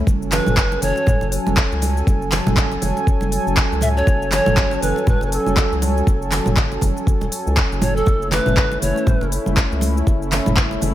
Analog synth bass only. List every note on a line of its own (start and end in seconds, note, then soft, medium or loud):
0.07 0.40 F#1 loud
0.47 0.77 F#1 loud
0.82 0.92 F#1 loud
1.22 1.38 F#1 loud
1.47 1.63 F#1 medium
1.72 2.02 C#2 medium
2.07 2.40 F#1 loud
2.46 2.77 F#1 loud
2.82 2.92 F#1 loud
3.21 3.38 F#1 loud
3.46 3.63 F#1 medium
3.72 4.02 C#2 medium
4.07 4.40 F#1 loud
4.47 4.77 F#1 loud
4.82 4.92 F#1 loud
5.21 5.38 F#1 loud
5.46 5.63 F#1 medium
5.71 6.02 C#2 medium
6.07 6.40 F#1 loud
6.47 6.77 F#1 loud
6.82 6.92 F#1 loud
7.21 7.29 E1 medium
7.47 7.63 C#2 medium
7.72 8.02 F#1 medium
8.07 8.40 F#1 medium
8.47 8.77 F#1 loud
8.82 8.92 F#1 loud
9.22 9.38 F#1 loud
9.47 9.63 F#1 medium
9.72 10.02 C#2 medium
10.07 10.40 F#1 loud
10.46 10.77 F#1 medium
10.82 10.92 F#1 loud